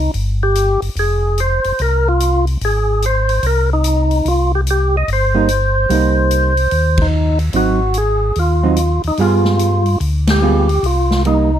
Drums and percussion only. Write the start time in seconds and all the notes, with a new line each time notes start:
0.14 open hi-hat
0.55 closed hi-hat
0.82 open hi-hat
0.96 open hi-hat
1.38 closed hi-hat
1.64 open hi-hat
1.79 open hi-hat
2.20 closed hi-hat
2.47 open hi-hat
2.61 open hi-hat
3.02 closed hi-hat
3.29 open hi-hat
3.43 open hi-hat
3.84 closed hi-hat
4.11 open hi-hat
4.26 open hi-hat
4.67 closed hi-hat
5.08 open hi-hat
5.48 closed hi-hat
5.90 open hi-hat
6.31 closed hi-hat
6.57 open hi-hat
6.71 open hi-hat
6.97 kick, ride
7.39 open hi-hat
7.53 open hi-hat
7.94 closed hi-hat
8.35 open hi-hat
8.76 closed hi-hat
9.03 open hi-hat
9.17 open hi-hat
9.45 snare
9.59 closed hi-hat
9.86 open hi-hat
10.01 open hi-hat
10.27 snare, ride
10.69 open hi-hat
10.84 open hi-hat
11.11 snare
11.25 closed hi-hat